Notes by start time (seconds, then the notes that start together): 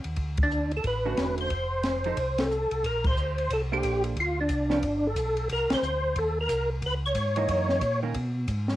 0.04 D#2, ride
0.16 D2, kick, ride
0.37 kick, ride
0.43 D4
0.51 hi-hat pedal
0.71 ride
0.77 A4
0.84 A1 B4, kick, ride
1.05 D3 A3 C#4 F#4
1.17 E1, snare, hi-hat pedal, ride
1.38 C5, ride
1.50 F1, kick, ride
1.83 snare, hi-hat pedal, ride
2.04 F3 D#4 A4 C5, ride
2.17 C2, kick, ride
2.38 A4, snare, ride
2.51 hi-hat pedal
2.71 C2, ride
2.84 A#1 A#4, kick, ride
3.04 C5, kick, crash
3.17 D2, hi-hat pedal
3.38 ride
3.50 C2 A4, kick, ride
3.72 A#3 D4 G4 A4 C5
3.83 A#1, kick, hi-hat pedal, ride
4.04 ride
4.16 D2, kick, ride
4.20 F4
4.41 D4
4.49 C2, kick, hi-hat pedal, ride
4.70 F3 B3 D4, snare
4.83 G1, kick, ride
5.07 A4
5.16 B1, kick, hi-hat pedal, ride
5.37 ride
5.49 C2 A#4, kick, ride
5.70 C2, snare, ride
5.74 C5
5.82 D2, hi-hat pedal
6.16 D#2 A4, kick, ride
6.41 A#4
6.49 C2, kick, hi-hat pedal, ride
6.82 C#2, kick, ride
6.86 B4
7.06 C#5
7.15 G#2, kick, hi-hat pedal, ride
7.36 E3 A#3 D#4, ride
7.49 F#2, kick, ride
7.69 snare
7.81 A#2, kick, hi-hat pedal, ride
8.03 D#3 A#3 C#4
8.14 B2, kick, ride
8.48 G#2, kick, hi-hat pedal, ride
8.68 snare